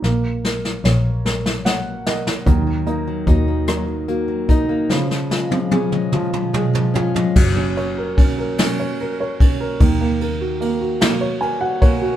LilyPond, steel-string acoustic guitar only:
\new Staff \with { instrumentName = "Steel-string acoustic guitar" } { \clef bass \time 6/8 \key fis \major \tempo 4. = 49 r2. | fis16 fis16 ais16 fis16 dis'16 ais16 fis16 fis16 ais16 fis16 dis'16 ais16 | eis16 eis16 gis16 eis16 cis'16 gis16 eis16 r16 gis16 eis16 cis'16 gis16 | r2. |
r2. | }